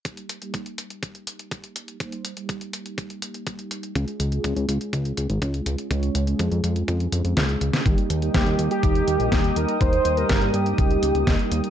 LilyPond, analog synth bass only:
\new Staff \with { instrumentName = "Analog synth bass" } { \clef bass \time 4/4 \key ees \mixolydian \tempo 4 = 123 r1 | r1 | des,16 r16 des,8 des,16 des,16 des,16 r16 des,8 des,16 aes,,16 des,8 des,16 r16 | des,8 des,8 f,16 f,16 f,8 f,8 f,16 f,16 des,8 des,16 r16 |
ees,16 r16 ees,8 ees,16 ees,16 ees,16 r16 ees,8 ees,16 bes,,16 ees,8 ees,16 r16 | ees,8 ees,8 g,16 g,16 g,8 des,8 des,16 des,16 ees,16 r16 ees,16 r16 | }